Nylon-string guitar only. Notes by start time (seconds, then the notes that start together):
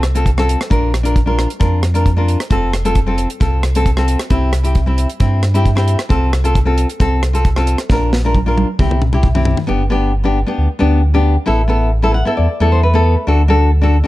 0.15 C4 F4 A4
0.38 C4 F4 A4
0.70 D4 F4 A#4
1.03 D4 F4 A#4
1.26 D4 F4 A#4
1.60 D4 F4 A#4
1.94 D4 F4 A#4
2.17 D4 F4 A#4
2.50 C4 F4 A4
2.85 C4 F4 A4
3.06 C4 F4 A4
3.40 C4 F4 A4
3.76 C4 F4 A4
3.97 C4 F4 A4
4.30 C4 E4 G4
4.63 C4 E4 G4
4.86 C4 E4 G4
5.20 C4 E4 G4
5.54 C4 E4 G4
5.75 C4 E4 G4
6.09 C4 F4 A4
6.44 C4 F4 A4
6.65 C4 F4 A4
7.00 C4 F4 A4
7.33 C4 F4 A4
7.56 C4 F4 A4
7.91 D4 F4 A#4
8.25 D4 F4 A#4
8.46 D4 F4 A#4
8.79 C4 E4 G4
9.13 C4 E4 G4
9.35 C4 E4 G4
9.67 B3 D4 G4
9.90 B3 D4 G4
10.24 B3 D4 G4
10.47 B3 D4 G4
10.79 B3 D4 G4
11.14 B3 D4 G4
11.46 B3 E4 A4
11.68 B3 E4 A4
12.02 B3 E4 A4
12.14 F#5
12.25 B3 E4 A4 E5
12.37 D5
12.60 B3 E4 A4
12.72 C5
12.83 B4
12.94 B3 E4 A4
13.27 D4 F#4 A4
13.48 D4 F#4 A4
13.82 D4 F#4 A4
14.04 D4